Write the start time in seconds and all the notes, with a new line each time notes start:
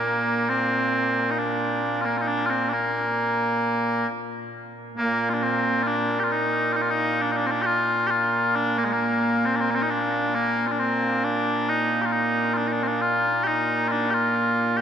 Already playing: A#2 A#3
0.49 C4
1.31 D#4
1.38 D4
2.01 A#3 F4
2.17 F4
2.22 D#4
2.27 D4
2.46 F4
2.50 C4
2.69 D4
2.73 A#3
4.97 A#2 A#3
5.30 D4 F4
5.43 C4
5.83 F4
5.87 D4
6.20 G4
6.24 F4
6.32 D#4
6.73 D#4 F4
6.82 F4
6.91 D#4
7.21 D4
7.32 D#4
7.36 D4
7.46 C4
7.51 D4
7.62 F4 G4
8.07 F4 G4
8.55 D4
8.78 A#3
8.84 G#3
8.93 A#3
9.46 C4
9.56 D4
9.60 C4
9.71 A#3
9.75 C4
9.82 D#4
9.90 D4
10.35 A#3
10.67 F4
10.72 D4
10.79 C4
11.24 D4
11.69 D#4
12.02 F4 G4
12.13 D#4
12.54 D4 F4
12.67 D#4
12.72 D4
12.83 C4
12.87 D4
13.02 F4
13.44 D#4 G4
13.88 D4 F4
14.11 F4 G4
14.77 G4